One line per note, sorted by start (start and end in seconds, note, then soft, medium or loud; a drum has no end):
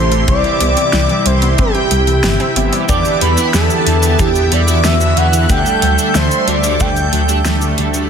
0.00 0.25 A1 medium
0.00 2.85 C3 medium
0.00 0.24 E3 medium
0.00 0.25 E3 medium
0.00 0.24 A3 medium
0.00 0.24 C4 medium
0.00 5.46 E4 medium
0.00 0.24 G4 loud
0.00 0.24 A4 medium
0.00 0.27 C5 loud
0.00 0.24 C6 loud
0.12 0.21 A3 medium
0.12 closed hi-hat medium
0.28 0.43 C2 loud
0.28 1.87 E3 medium
0.28 0.37 E3 medium
0.28 1.87 G3 medium
0.28 1.87 C4 medium
0.28 1.87 G4 loud
0.28 1.28 D5 loud
0.28 1.22 D6 loud
0.28 kick loud
0.28 closed hi-hat soft
0.44 0.58 E4 medium
0.44 closed hi-hat soft
0.60 0.75 C2 loud
0.60 0.70 B3 loud
0.60 closed hi-hat loud
0.77 0.86 C4 medium
0.77 closed hi-hat medium
0.93 1.08 C2 medium
0.93 1.03 E4 medium
0.93 snare loud
0.93 closed hi-hat medium
1.09 1.19 E3 medium
1.09 closed hi-hat soft
1.26 1.55 C2 medium
1.26 1.35 G3 medium
1.26 1.58 C5 loud
1.26 1.56 C6 loud
1.26 closed hi-hat medium
1.42 1.52 B3 medium
1.42 closed hi-hat medium
1.58 1.73 G1 medium
1.58 1.68 C4 loud
1.58 2.52 G4 medium
1.58 2.52 G5 medium
1.58 kick loud
1.58 closed hi-hat medium
1.75 1.84 C4 medium
1.75 closed hi-hat soft
1.91 2.21 C2 medium
1.91 2.00 G3 medium
1.91 closed hi-hat loud
2.07 2.13 E3 medium
2.07 closed hi-hat medium
2.24 2.38 G1 medium
2.24 2.38 C4 medium
2.24 snare loud
2.24 closed hi-hat medium
2.40 2.54 C4 loud
2.40 closed hi-hat soft
2.56 2.71 G1 medium
2.56 2.85 E3 medium
2.56 2.85 B3 medium
2.56 2.85 C4 medium
2.56 2.70 E4 medium
2.56 2.85 G4 loud
2.56 closed hi-hat medium
2.73 2.82 G3 medium
2.73 closed hi-hat medium
2.89 3.04 E2 loud
2.89 8.07 D3 medium
2.89 4.48 E3 medium
2.89 2.97 E3 loud
2.89 4.48 B3 medium
2.89 5.47 B3 medium
2.89 4.48 D4 medium
2.89 4.48 G4 loud
2.89 3.19 D5 loud
2.89 3.19 D6 loud
2.89 kick loud
2.89 closed hi-hat soft
2.89 cabasa soft
3.05 closed hi-hat soft
3.05 cabasa soft
3.21 3.36 E2 loud
3.21 3.30 G3 loud
3.21 3.52 B4 medium
3.21 3.52 B5 medium
3.21 closed hi-hat medium
3.38 3.46 E4 loud
3.38 closed hi-hat medium
3.38 cabasa medium
3.54 3.69 E2 medium
3.54 3.62 B3 medium
3.54 4.21 A4 medium
3.54 4.15 A5 medium
3.54 snare loud
3.54 closed hi-hat medium
3.54 cabasa soft
3.70 closed hi-hat soft
3.70 cabasa soft
3.87 4.16 E2 medium
3.87 3.95 E3 loud
3.87 closed hi-hat medium
4.03 4.15 E3 medium
4.03 closed hi-hat medium
4.03 cabasa medium
4.19 4.49 E2 medium
4.19 4.28 E3 loud
4.19 4.53 G4 loud
4.19 4.50 G5 loud
4.19 kick loud
4.19 closed hi-hat soft
4.19 cabasa soft
4.36 closed hi-hat soft
4.36 cabasa soft
4.52 4.81 E2 medium
4.52 4.60 G3 loud
4.52 4.86 D5 loud
4.52 4.82 D6 loud
4.52 closed hi-hat medium
4.68 4.81 E3 medium
4.68 4.81 B3 medium
4.68 4.81 D4 medium
4.68 4.76 E4 loud
4.68 4.81 F#4 loud
4.68 closed hi-hat medium
4.68 cabasa medium
4.84 5.14 E2 medium
4.84 5.46 E3 medium
4.84 4.93 B3 medium
4.84 5.46 B3 medium
4.84 5.46 D4 medium
4.84 5.46 F#4 loud
4.84 5.19 E5 loud
4.84 5.15 E6 loud
4.84 snare loud
4.84 closed hi-hat medium
4.84 cabasa soft
5.01 closed hi-hat soft
5.01 cabasa soft
5.17 5.47 E2 medium
5.17 5.25 E3 loud
5.17 5.51 F#5 loud
5.17 5.48 F#6 loud
5.17 closed hi-hat medium
5.33 5.46 E3 medium
5.33 closed hi-hat medium
5.33 cabasa medium
5.50 5.64 D2 loud
5.50 5.58 D3 loud
5.50 7.09 G3 medium
5.50 7.09 A3 medium
5.50 7.09 D4 medium
5.50 7.09 A4 loud
5.50 8.10 A4 medium
5.50 6.17 G5 loud
5.50 6.11 G6 loud
5.50 kick loud
5.50 closed hi-hat medium
5.50 cabasa soft
5.66 closed hi-hat soft
5.66 cabasa soft
5.82 5.97 D2 loud
5.82 5.90 F#3 loud
5.82 closed hi-hat medium
5.99 6.07 D4 loud
5.99 closed hi-hat medium
5.99 cabasa medium
6.15 6.30 D2 medium
6.15 6.23 A3 medium
6.15 6.49 C5 loud
6.15 6.46 C6 loud
6.15 snare loud
6.15 closed hi-hat medium
6.15 cabasa medium
6.31 closed hi-hat soft
6.31 cabasa soft
6.48 6.77 D2 medium
6.48 6.56 D3 loud
6.48 6.82 D5 medium
6.48 6.78 D6 loud
6.48 closed hi-hat medium
6.64 6.76 D3 medium
6.64 closed hi-hat medium
6.64 cabasa medium
6.80 7.10 D2 medium
6.80 6.88 D3 loud
6.80 7.46 G5 loud
6.80 7.42 G6 loud
6.80 kick loud
6.80 closed hi-hat medium
6.80 cabasa soft
6.96 closed hi-hat soft
6.96 cabasa soft
7.13 7.42 D2 loud
7.13 7.21 F#3 loud
7.13 closed hi-hat medium
7.29 7.41 G3 medium
7.29 7.41 A3 medium
7.29 7.41 D4 medium
7.29 7.37 D4 loud
7.29 7.41 G4 loud
7.29 closed hi-hat soft
7.29 cabasa medium
7.45 7.75 D2 medium
7.45 8.07 G3 medium
7.45 8.07 A3 medium
7.45 7.54 A3 medium
7.45 8.07 D4 medium
7.45 8.07 G4 loud
7.45 snare loud
7.45 closed hi-hat medium
7.45 cabasa soft
7.62 closed hi-hat soft
7.62 cabasa soft
7.78 8.07 D2 medium
7.78 7.86 D3 loud
7.78 closed hi-hat medium
7.94 8.07 D3 medium
7.94 closed hi-hat soft
7.94 cabasa medium